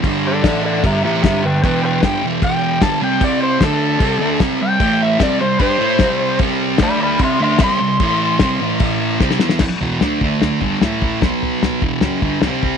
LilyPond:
<<
  \new Staff \with { instrumentName = "Electric slide guitar" } { \time 4/4 \key c \lydian \tempo 4 = 150 r8 <a' d''>8 <a' d''>8 <a' d''>8 <g' e''>8 <g' e''>8 <g' e''>8 <b' g''>8 | <b' g''>8 <b' g''>8 g''8 r8 g''4 a''8 g''8 | d''8 c''8 a'2 r8 g''8~ | g''8 e''8 d''8 c''8 c''2 |
r4 <d'' b''>8 <d'' b''>8 <e'' c'''>8 <e'' c'''>8 c'''4~ | c'''2 r2 | r1 | r1 | }
  \new Staff \with { instrumentName = "Distorted electric guitar" } { \clef bass \time 4/4 \key c \lydian <g, d g>4 <a, e a>4 <g, d g>8 <a, e a>8 <g, d g>8 <g, d>8 | <e, b, e>4 <g, d g>8 <e, b, e>4. <g, d g>8 <c g c'>8 | <c g c'>4 <d a d'>4 <c g c'>8 <d a d'>8 <c g c'>8 <c g>8 | <a, e a>4 <c g c'>8 <c g>8 <g d' g'>8 <a e' a'>8 <c g c'>4 |
<c g c'>4 <d a d'>4 <c g c'>8 <d a d'>8 <c g c'>8 <c g>8 | <a, e a>4 <c g c'>8 <a, e a>4. <c g c'>8 <e b e'>8 | r8 <e, b, e>8 <d a d'>8 <d a d'>4 <g, d g>8 <a, e a>4 | <b, fis b>4. <e, b, e>8 <fis, cis fis>8 <g, d g>8 <c g c'>4 | }
  \new DrumStaff \with { instrumentName = "Drums" } \drummode { \time 4/4 <cymc bd>4 <cymc bd sn>4 <cymc bd>4 <cymc bd sn>4 | <cymc bd>4 <cymc bd sn>4 <cymc bd>4 <cymc bd sn>4 | <cymc bd>4 <cymc bd sn>4 <cymc bd>4 <cymc bd sn>4 | <cymc bd>4 <cymc bd sn>4 <cymc bd>4 <cymc bd sn>4 |
<cymc bd>4 <cymc bd sn>4 <cymc bd>4 <cymc bd sn>4 | <cymc bd>4 <cymc bd sn>4 <cymc bd>4 <bd sn>16 sn16 sn16 sn16 | <cymc bd sn tomfh>8 tomfh8 <sn tomfh>8 <bd tomfh>8 <sn tomfh>8 <bd tomfh>8 <sn tomfh>8 <bd tomfh>8 | <bd sn tomfh>8 tomfh8 <sn tomfh>8 <bd tomfh>8 <sn tomfh>8 <bd tomfh>8 <sn tomfh>8 <bd tomfh>8 | }
>>